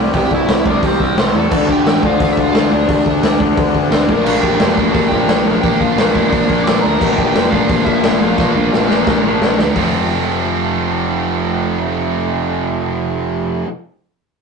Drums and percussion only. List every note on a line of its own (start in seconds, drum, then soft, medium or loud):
0.14 kick loud
0.14 open hi-hat medium
0.31 kick medium
0.48 snare loud
0.48 open hi-hat medium
0.66 kick loud
0.83 kick loud
0.83 open hi-hat medium
1.00 kick medium
1.18 snare loud
1.18 open hi-hat medium
1.52 kick loud
1.52 crash loud
1.69 kick medium
1.86 snare loud
1.86 open hi-hat medium
2.03 kick loud
2.20 kick loud
2.20 open hi-hat medium
2.37 kick medium
2.55 snare loud
2.55 open hi-hat medium
2.89 kick loud
2.89 open hi-hat medium
3.06 kick loud
3.23 snare loud
3.23 open hi-hat medium
3.40 kick loud
3.57 kick loud
3.57 open hi-hat medium
3.75 kick medium
3.92 snare loud
3.92 open hi-hat medium
4.09 kick loud
4.26 crash loud
4.43 kick medium
4.59 snare loud
4.59 open hi-hat medium
4.77 kick loud
4.95 kick loud
4.95 open hi-hat medium
5.12 kick medium
5.29 snare loud
5.29 open hi-hat medium
5.64 kick loud
5.64 open hi-hat medium
5.81 kick medium
5.98 snare loud
5.98 open hi-hat medium
6.15 kick medium
6.33 kick loud
6.33 open hi-hat medium
6.50 kick medium
6.67 snare loud
6.67 open hi-hat medium
7.01 kick loud
7.01 crash loud
7.18 kick medium
7.35 snare loud
7.35 open hi-hat medium
7.52 kick loud
7.69 kick loud
7.69 open hi-hat medium
7.87 kick medium
8.03 snare loud
8.03 open hi-hat medium
8.38 kick loud
8.38 snare medium
8.73 snare medium
8.91 snare medium
9.07 kick loud
9.07 snare medium
9.42 snare loud
9.59 snare medium
9.76 kick loud
9.76 open hi-hat medium